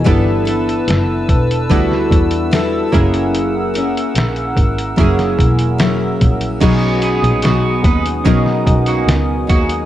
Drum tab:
CC |----------------|----------------|x---------------|
HH |x-xxx-xxx-xxx-xx|x-xxxxxxxxxxx-xx|x-xxx-xxx-xxx-xx|
SD |----o----o--o---|----o----o--o---|----o----o--o---|
BD |o-----o-o-o---o-|------o-o-o---o-|o-----o-o-o---o-|